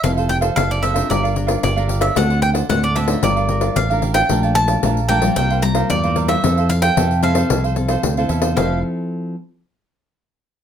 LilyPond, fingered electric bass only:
\new Staff \with { instrumentName = "Fingered electric bass" } { \clef bass \time 4/4 \key f \major \tempo 4 = 112 f,,4 ges,,4 g,,4 g,,4 | d,4 d,4 g,,4 a,,4 | bes,,4 bes,,4 c,4 e,4 | f,4 f,4 c,4 d,8 e,8 |
f,,8 r2. r8 | }